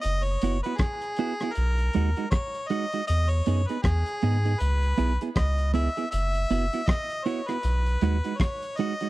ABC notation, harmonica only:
X:1
M:4/4
L:1/16
Q:"Swing 16ths" 1/4=79
K:B
V:1 name="Harmonica"
d c2 B G4 A4 c2 d2 | d c2 B G4 B4 d2 e2 | e4 d2 c B4- B c2 d2 |]